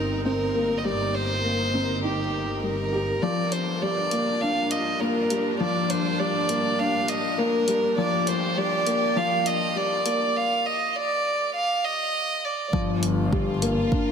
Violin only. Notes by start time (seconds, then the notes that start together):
Already playing: A#4
0.25 A#4
0.78 D#5
0.84 D5
1.14 C5
2.04 G4
2.63 A#4
3.22 D5
3.51 C5
3.82 D5
4.41 F5
4.71 D#5
5.00 A#4
5.60 D5
5.90 C5
6.20 D5
6.79 F5
7.09 D#5
7.39 A#4
7.98 D5
8.27 C5
8.58 D5
9.17 F5
9.47 D#5
9.77 D5
10.36 F5
10.66 D#5
10.95 D5
11.55 F5
11.84 D#5
12.44 D5